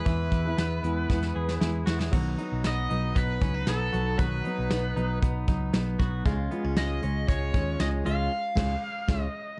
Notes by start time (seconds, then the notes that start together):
Already playing: B3 E4 G#4 B4
0.05 E2 E3 G#3 B3 E4 G#4, kick, closed hi-hat
0.31 E2 E4, kick, closed hi-hat
0.45 B3 E4 G#4
0.57 E2 B3, snare, closed hi-hat
0.83 E2 G#3 B3 E4 G#4, closed hi-hat
1.10 E2 G#3 B3 E4 G#4, kick, snare
1.23 snare
1.36 E2 G#4
1.49 snare
1.61 E2 G#3 B3 E4 G#4, snare
1.86 E2 G#3 B3 E4 F#4 G#4, snare
1.99 G#4, snare
2.12 B1 B2 D#3 F#3 B3 D#4 F#4 B4, kick, crash
2.38 F#3 B3 D#4 B4, closed hi-hat
2.52 B1
2.64 B1 B3 D#5, snare, closed hi-hat
2.90 B1 F#3 B3 D#4 B4, closed hi-hat
3.15 B1 B3 B4, kick, closed hi-hat
3.41 C#2 F#3 B3 C#4 D#4 B4, kick, closed hi-hat
3.54 D#4
3.67 B1 F#3 B3 D#4 A4 B4, snare, closed hi-hat
3.92 B1 F#3 B3 D#4 F#4 B4, closed hi-hat
4.18 B1 B2 D#3 F#3 B3 D#4 F#4 B4, kick, closed hi-hat
4.44 F#3 B3 D#4 B4, closed hi-hat
4.59 B1
4.70 B1 B3, snare, closed hi-hat
4.96 B1 F#3 B3 D#4 B4, closed hi-hat
5.22 B1 B3, kick, closed hi-hat
5.47 C#2 F#3 B3 D#4 B4, kick, closed hi-hat
5.73 B1 F#3 B3 D#4 B4, snare, closed hi-hat
5.99 B1 F#3 B3 D#4 F#4 B4, kick, closed hi-hat
6.26 C#2 C#3 G#3 C#4 F4 C#5, kick, closed hi-hat
6.51 G#3 B3 C#4 F4 C#5, closed hi-hat
6.65 C#2 C#4
6.76 C#2 G#3 D#5, snare, closed hi-hat
7.02 C#2 G#3 C#4 F4 C#5, closed hi-hat
7.28 C#2 G#3 C#5, kick, closed hi-hat
7.54 D#2 G#3 C#4 F4 C#5, kick, closed hi-hat
7.79 C#2 G#3 C#4 F4 C#5 D#5, snare, closed hi-hat
8.04 C#2 G#3 C#4 F4 C#5 F5, closed hi-hat
8.55 C#2 G#3 C#4 F4 C#5, kick, snare, crash
9.07 C#2 G#3 C#4 F4 C#5, kick, snare
9.21 D#5